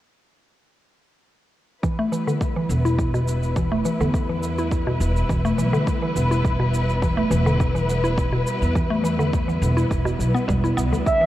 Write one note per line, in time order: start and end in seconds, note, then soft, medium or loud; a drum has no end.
1.83 1.98 E3 medium
1.83 11.26 G3 medium
1.83 11.26 B3 medium
1.83 11.02 E4 medium
1.83 11.06 B4 medium
1.83 kick medium
1.83 shaker soft
1.99 2.12 A3 medium
2.12 2.26 E3 medium
2.12 shaker medium
2.27 2.40 D3 medium
2.27 shaker soft
2.41 kick medium
2.41 shaker soft
2.56 2.84 E3 medium
2.69 3.79 E1 medium
2.69 shaker medium
2.85 2.98 E4 medium
2.85 shaker soft
2.99 kick medium
2.99 shaker soft
3.14 3.55 B2 medium
3.14 shaker soft
3.28 shaker medium
3.43 shaker soft
3.56 3.71 E3 medium
3.56 kick medium
3.56 shaker soft
3.72 3.84 A3 medium
3.85 3.99 E3 medium
3.85 shaker medium
4.00 4.94 E2 medium
4.00 4.13 D3 medium
4.00 shaker soft
4.14 kick medium
4.14 shaker soft
4.29 4.57 E3 medium
4.43 shaker medium
4.58 4.71 E4 medium
4.58 shaker soft
4.72 kick medium
4.72 shaker soft
4.87 5.28 B2 loud
5.00 5.22 E1 medium
5.00 shaker medium
5.16 shaker soft
5.29 5.51 E1 medium
5.29 5.44 E3 medium
5.29 kick loud
5.29 shaker soft
5.45 5.58 A3 medium
5.45 shaker soft
5.58 5.69 B1 medium
5.58 5.72 E3 medium
5.58 shaker medium
5.73 5.86 D3 loud
5.73 shaker soft
5.87 kick medium
5.87 shaker soft
6.02 6.30 E3 medium
6.16 7.25 E1 medium
6.16 shaker medium
6.31 6.44 E4 medium
6.31 shaker soft
6.45 kick loud
6.45 shaker soft
6.60 7.01 B2 medium
6.74 shaker medium
6.90 shaker soft
7.02 7.17 E3 medium
7.02 kick medium
7.02 shaker soft
7.17 7.30 A3 loud
7.31 8.40 E1 medium
7.31 7.45 E3 medium
7.31 shaker medium
7.46 7.59 D3 loud
7.46 shaker soft
7.60 kick loud
7.60 shaker soft
7.75 8.03 E3 medium
7.75 shaker soft
7.89 shaker medium
8.04 8.17 E4 medium
8.04 shaker soft
8.18 kick loud
8.18 shaker soft
8.33 8.74 B2 medium
8.47 shaker medium
8.62 9.56 E2 medium
8.62 shaker soft
8.75 8.90 E3 medium
8.75 kick loud
8.75 shaker soft
8.90 9.03 A3 medium
9.04 9.18 E3 medium
9.04 shaker medium
9.19 9.32 D3 medium
9.19 shaker soft
9.33 kick medium
9.33 shaker soft
9.48 9.76 E3 medium
9.48 shaker soft
9.62 9.83 E1 medium
9.62 shaker medium
9.77 9.90 E4 medium
9.77 shaker soft
9.91 10.12 E1 medium
9.91 kick medium
9.91 shaker soft
10.05 10.18 B2 loud
10.05 shaker soft
10.19 10.31 B1 medium
10.19 shaker medium
10.35 10.47 B3 medium
10.35 shaker soft
10.48 10.70 E1 medium
10.48 10.63 G3 medium
10.48 kick loud
10.48 shaker soft
10.64 10.77 E4 medium
10.64 shaker soft
10.77 10.92 B1 medium
10.77 10.92 B3 medium
10.77 shaker medium
10.92 11.02 D2 medium
10.92 11.05 D3 medium
10.92 shaker soft
11.05 11.26 D4 medium
11.05 11.26 G4 medium
11.05 11.26 E5 medium
11.05 kick loud
11.05 shaker soft
11.21 11.26 E3 medium